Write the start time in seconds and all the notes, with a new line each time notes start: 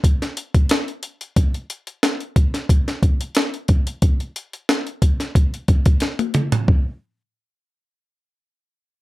0.04 kick, closed hi-hat
0.22 snare, closed hi-hat
0.37 closed hi-hat
0.55 kick, closed hi-hat
0.69 snare, closed hi-hat
0.88 closed hi-hat
1.03 closed hi-hat
1.21 closed hi-hat
1.36 kick, closed hi-hat
1.54 closed hi-hat
1.70 closed hi-hat
1.87 closed hi-hat
2.03 snare, closed hi-hat
2.20 closed hi-hat
2.36 kick, closed hi-hat
2.54 snare, closed hi-hat
2.69 kick, closed hi-hat
2.88 snare, closed hi-hat
3.03 kick, closed hi-hat
3.21 closed hi-hat
3.35 snare, closed hi-hat
3.54 closed hi-hat
3.68 kick, closed hi-hat
3.87 closed hi-hat
4.02 kick, closed hi-hat
4.20 closed hi-hat
4.36 closed hi-hat
4.53 closed hi-hat
4.69 snare, closed hi-hat
4.87 closed hi-hat
5.02 kick, closed hi-hat
5.20 snare, closed hi-hat
5.35 kick, closed hi-hat
5.54 closed hi-hat
5.68 kick, closed hi-hat
5.86 kick, closed hi-hat
6.00 snare, closed hi-hat
6.19 closed hi-hat, high tom
6.34 closed hi-hat, mid tom
6.52 closed hi-hat, floor tom
6.68 kick